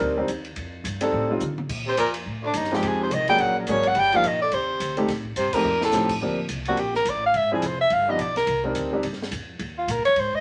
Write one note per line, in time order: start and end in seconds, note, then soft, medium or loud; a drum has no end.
0.00 0.27 D2 medium
0.00 0.16 G3 medium
0.00 0.16 C4 medium
0.00 0.16 D4 medium
0.00 0.16 D#4 medium
0.00 0.16 A#4 medium
0.00 kick soft
0.17 0.28 G3 medium
0.17 0.28 C4 medium
0.17 0.28 D4 medium
0.17 0.28 D#4 medium
0.17 0.28 C5 medium
0.28 0.56 D#2 medium
0.28 kick soft
0.28 hi-hat pedal medium
0.28 ride medium
0.45 ride soft
0.56 0.83 F2 medium
0.56 kick soft
0.56 ride medium
0.84 1.12 G2 medium
0.84 kick soft
0.84 hi-hat pedal soft
0.84 ride medium
1.01 1.28 G3 medium
1.01 1.28 C4 medium
1.01 1.29 D4 medium
1.01 1.28 D#4 medium
1.01 1.29 A4 medium
1.01 ride medium
1.12 1.40 A2 medium
1.12 kick soft
1.30 1.41 G3 medium
1.30 1.41 C4 medium
1.30 1.41 D4 medium
1.30 1.41 D#4 medium
1.30 1.41 F4 medium
1.40 1.69 D3 medium
1.40 hi-hat pedal medium
1.40 mid tom soft
1.58 mid tom medium
1.69 1.97 A#2 medium
1.69 kick medium
1.69 crash medium
1.87 1.97 C3 medium
1.87 1.99 C5 medium
1.97 2.25 F2 medium
1.97 2.14 A#2 medium
1.97 2.10 A#4 medium
1.97 kick soft
1.97 hi-hat pedal medium
1.97 ride medium
2.14 ride medium
2.26 2.53 A2 medium
2.26 kick soft
2.43 2.56 D2 medium
2.43 2.59 D4 medium
2.54 2.74 D#2 medium
2.54 2.82 G2 medium
2.54 2.77 D#4 medium
2.54 kick soft
2.54 hi-hat pedal medium
2.54 ride medium
2.64 snare soft
2.71 2.86 G2 medium
2.71 3.09 F3 medium
2.71 3.09 G#3 medium
2.71 3.09 C4 medium
2.71 3.09 D#4 medium
2.71 3.09 G4 medium
2.71 2.89 G4 medium
2.71 snare soft
2.83 3.10 F2 medium
2.83 3.00 G#2 medium
2.83 ride medium
2.87 3.02 G#4 medium
3.01 3.13 C3 medium
3.01 3.15 C5 medium
3.10 3.38 C2 medium
3.10 3.28 D#3 medium
3.10 3.29 D#5 medium
3.10 kick soft
3.10 hi-hat pedal medium
3.10 ride medium
3.28 3.66 F#3 medium
3.28 3.41 G3 medium
3.28 3.66 A#3 medium
3.28 3.66 C#4 medium
3.28 3.66 D4 medium
3.28 3.66 G#4 medium
3.28 3.42 G5 loud
3.28 ride soft
3.38 3.67 A#1 medium
3.38 3.56 F#3 medium
3.38 3.57 F#5 medium
3.38 kick soft
3.38 ride medium
3.58 3.70 A#2 soft
3.58 3.72 A#4 soft
3.67 3.95 G#1 medium
3.67 3.87 C#3 medium
3.67 3.83 F#3 medium
3.67 3.83 A#3 medium
3.67 3.83 C#4 medium
3.67 3.83 D4 medium
3.67 3.83 G#4 medium
3.67 3.90 C#5 medium
3.67 kick soft
3.67 hi-hat pedal medium
3.67 ride medium
3.83 3.97 F#3 medium
3.83 ride soft
3.88 4.00 F#5 medium
3.95 4.23 G1 medium
3.95 4.15 G3 medium
3.95 kick soft
3.95 ride medium
3.99 4.18 G5 loud
4.12 4.23 F3 medium
4.12 4.27 F3 medium
4.12 4.24 A#3 medium
4.12 4.24 D4 medium
4.12 4.24 D#4 medium
4.12 4.24 G4 medium
4.12 4.29 F5 medium
4.12 ride soft
4.23 4.51 A#1 medium
4.23 4.42 D#3 medium
4.23 4.41 D#5 medium
4.23 hi-hat pedal medium
4.23 ride medium
4.42 4.56 D3 medium
4.42 4.56 D5 medium
4.52 4.79 D#2 medium
4.52 4.98 C3 medium
4.52 4.98 C5 medium
4.52 kick soft
4.52 ride medium
4.80 5.08 D2 medium
4.80 kick soft
4.80 hi-hat pedal medium
4.80 ride medium
4.97 5.08 G3 medium
4.97 5.08 A3 medium
4.97 5.08 C4 medium
4.97 5.08 D#4 medium
4.97 5.08 G4 medium
4.97 ride soft
5.08 5.35 A2 medium
5.08 kick soft
5.08 snare soft
5.08 ride medium
5.25 kick medium
5.36 5.52 G2 medium
5.36 5.55 C3 medium
5.36 5.56 C5 medium
5.36 kick soft
5.36 hi-hat pedal soft
5.36 ride medium
5.53 5.81 A#2 medium
5.53 5.64 F3 medium
5.53 5.64 A3 medium
5.53 5.64 C4 medium
5.53 5.65 D#4 medium
5.53 5.65 G4 medium
5.53 5.82 A#4 medium
5.53 muted upright bass stroke soft
5.53 kick medium
5.53 crash medium
5.64 5.91 F2 medium
5.81 6.13 A2 medium
5.81 6.15 A4 medium
5.81 snare medium
5.92 6.20 A2 medium
5.92 6.08 F3 medium
5.92 6.08 A3 medium
5.92 6.09 C4 medium
5.92 6.09 D#4 medium
5.92 6.09 G4 medium
5.92 snare medium
5.92 hi-hat pedal medium
6.09 kick medium
6.09 crash medium
6.21 6.48 D2 medium
6.21 6.37 F3 medium
6.21 6.37 A#3 medium
6.21 6.37 C4 medium
6.21 6.37 D4 medium
6.21 6.37 G4 medium
6.21 kick soft
6.49 6.76 C2 medium
6.49 kick soft
6.49 hi-hat pedal medium
6.49 ride medium
6.65 6.78 F3 medium
6.65 6.78 A#3 medium
6.65 6.78 C4 medium
6.65 6.78 D4 medium
6.65 6.81 F#4 medium
6.65 6.78 G4 medium
6.65 ride soft
6.77 7.04 A#1 medium
6.77 6.96 G4 medium
6.77 kick soft
6.77 ride medium
6.95 7.11 A#4 medium
6.95 snare soft
7.05 7.33 A1 medium
7.05 kick soft
7.05 hi-hat pedal soft
7.05 ride medium
7.10 7.25 D5 medium
7.26 7.38 F5 medium
7.34 7.61 G#1 medium
7.34 7.52 E5 medium
7.34 kick soft
7.34 ride medium
7.52 7.62 F3 medium
7.52 7.62 C4 medium
7.52 7.62 D4 medium
7.52 7.62 E4 medium
7.52 7.62 G#4 medium
7.52 7.68 G#4 medium
7.62 7.90 F1 medium
7.62 kick soft
7.62 hi-hat pedal medium
7.62 ride medium
7.66 7.80 C5 medium
7.81 7.94 E5 medium
7.90 8.17 G1 medium
7.90 8.12 F5 medium
7.90 kick soft
7.90 ride medium
8.08 8.18 F3 medium
8.08 8.18 B3 medium
8.08 8.18 D4 medium
8.08 8.19 D#4 medium
8.08 8.19 G4 medium
8.08 8.22 D#5 medium
8.18 8.46 B1 medium
8.18 8.36 D5 medium
8.18 kick soft
8.18 hi-hat pedal soft
8.18 ride medium
8.36 8.63 A#4 medium
8.36 snare soft
8.36 ride soft
8.47 8.74 C2 medium
8.47 kick soft
8.47 ride medium
8.64 8.91 G3 medium
8.64 8.91 C4 medium
8.64 8.91 D4 medium
8.64 8.91 D#4 medium
8.64 8.91 A#4 medium
8.64 kick medium
8.75 9.03 D2 medium
8.75 kick soft
8.75 hi-hat pedal soft
8.75 ride medium
8.93 9.03 G3 medium
8.93 9.03 C4 medium
8.93 9.03 D4 medium
8.93 9.03 D#4 medium
8.93 9.03 G4 medium
9.03 9.31 G2 medium
9.03 kick soft
9.03 ride medium
9.13 snare soft
9.23 snare soft
9.31 9.59 F2 medium
9.31 kick soft
9.31 hi-hat pedal medium
9.31 ride medium
9.59 9.87 D#2 medium
9.59 kick soft
9.59 ride medium
9.78 9.93 F4 medium
9.88 9.99 A#2 medium
9.88 10.05 A#4 medium
9.88 kick soft
9.88 hi-hat pedal medium
9.88 ride medium
9.98 10.07 F#2 medium
10.05 10.16 D#2 medium
10.05 10.21 C#5 loud
10.05 ride soft
10.16 10.40 G#2 medium
10.16 10.37 C5 medium
10.16 kick soft
10.16 ride medium
10.33 10.40 D#5 loud
10.33 kick medium